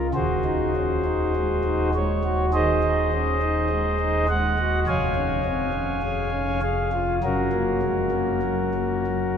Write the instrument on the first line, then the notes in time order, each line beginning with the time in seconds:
pipe organ
Already playing: C#2 C#3 F4
0.14 D#1 D#2 F#4 G#4 C5
0.45 D#4
0.77 C#4
1.05 D#4
1.36 G#3
1.64 D#4
1.95 G#3 C#5
2.24 F#4
2.53 D#3 G#4 C5 D#5
2.84 D#4
3.13 C#4
3.42 D#4
3.70 G#3
4.00 D#4
4.29 G#3 F#5
4.58 F#4
4.87 F1 F2 C#5 F5 G#5
5.16 C#4
5.45 C4
5.73 C#4
6.03 G#4
6.32 C#4
6.62 G#4 F5
6.93 F4
7.23 F#1 F#2 C#4 F#4 A#4
7.53 A#3
7.83 G#3
8.12 A#3
8.43 F#3
8.75 A#3
9.07 F#3